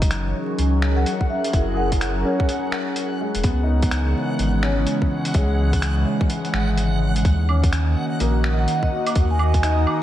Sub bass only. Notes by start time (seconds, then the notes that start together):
Already playing: F#1
0.59 C#2
1.54 F#1
3.35 E1
3.44 C#2
4.39 G#1
5.35 C#2
6.54 G#1
7.25 D#2
8.21 A#1
9.16 D#2